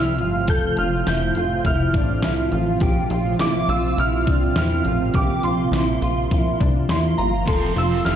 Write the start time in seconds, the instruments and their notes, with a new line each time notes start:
Already playing: analog synth bass C2, ambient pad A2 C3 F3 C4 F4, clean electric guitar E4, synth bell F6
0.18 analog synth bass G1, clean electric guitar F4, closed hi-hat
0.48 analog synth bass F1, clean electric guitar A4, synth bell G6, kick, closed hi-hat
0.77 analog synth bass F1, clean electric guitar F4, synth bell F6, closed hi-hat
1.07 analog synth bass F1, clean electric guitar E4, synth bell G6, snare, closed hi-hat
1.35 analog synth bass F1, clean electric guitar F4, closed hi-hat
1.65 analog synth bass F1, clean electric guitar E4, synth bell F6, kick, closed hi-hat
1.94 analog synth bass A1, clean electric guitar D4, kick, closed hi-hat
2.22 analog synth bass C2, clean electric guitar E4, snare, closed hi-hat
2.52 analog synth bass A1, clean electric guitar F4, closed hi-hat
2.80 analog synth bass A#1, ambient pad A#2 C3 C4, clean electric guitar G4, kick, closed hi-hat
3.10 analog synth bass A#1, clean electric guitar F4, closed hi-hat
3.39 analog synth bass A#1, clean electric guitar E4, synth bell D6, snare, closed hi-hat
3.69 analog synth bass A#1, clean electric guitar F4, synth bell E6, closed hi-hat
3.98 analog synth bass A#1, clean electric guitar E4, synth bell F6, closed hi-hat
4.27 analog synth bass C2, clean electric guitar D4, kick, closed hi-hat
4.56 analog synth bass E2, clean electric guitar E4, synth bell F6, snare, closed hi-hat
4.85 analog synth bass A1, clean electric guitar F4, closed hi-hat
5.14 analog synth bass A#1, ambient pad A#3, clean electric guitar G4, synth bell D6, kick, closed hi-hat
5.43 analog synth bass A#1, clean electric guitar F4, synth bell C6, closed hi-hat
5.72 analog synth bass A#1, clean electric guitar E4, snare, closed hi-hat
6.02 analog synth bass A#1, clean electric guitar F4, closed hi-hat
6.31 analog synth bass A#1, clean electric guitar E4, kick, closed hi-hat
6.60 analog synth bass C2, clean electric guitar D4, kick, closed hi-hat
6.89 analog synth bass E2, clean electric guitar E4, synth bell C6, snare, closed hi-hat
7.18 analog synth bass G1, clean electric guitar F4, synth bell A#5, closed hi-hat
7.46 analog synth bass F1, overdriven electric guitar F2 C3 F3, ambient pad F4 A4 C5 A5, clean electric guitar A4, synth bell C6, kick, closed hi-hat, crash
7.51 overdriven electric guitar A3 C4 F4
7.76 analog synth bass F1, clean electric guitar F4, synth bell E6, closed hi-hat
8.04 analog synth bass F1, clean electric guitar E4, synth bell F6, snare, closed hi-hat